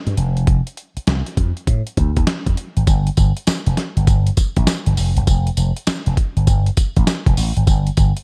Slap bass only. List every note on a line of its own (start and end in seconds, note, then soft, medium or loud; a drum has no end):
0.07 0.14 G2 medium
0.17 0.60 F1 medium
0.97 muted slap bass stroke soft
1.07 1.21 C2 medium
1.37 1.51 F2 medium
1.67 1.81 A2 medium
1.97 2.11 D2 medium
2.17 2.24 D#2 medium
2.46 2.54 F2 loud
2.77 2.84 G#1 medium
2.87 3.09 G1 loud
3.18 3.31 G1 loud
3.47 muted slap bass stroke soft
3.67 3.74 F1 medium
3.97 4.04 G1 medium
4.07 4.29 G1 medium
4.57 4.64 A#1 medium
4.87 4.94 G1 medium
4.97 5.11 F1 medium
5.17 5.24 F#1 medium
5.27 5.49 F1 loud
5.57 5.71 F1 loud
5.88 muted slap bass stroke soft
6.07 6.14 F1 loud
6.37 6.44 G1 medium
6.47 6.69 G1 loud
6.97 7.04 A1 medium
7.27 7.34 F1 medium
7.37 7.51 A1 loud
7.57 7.64 G#1 medium
7.67 7.89 G1 loud
7.98 8.11 G1 loud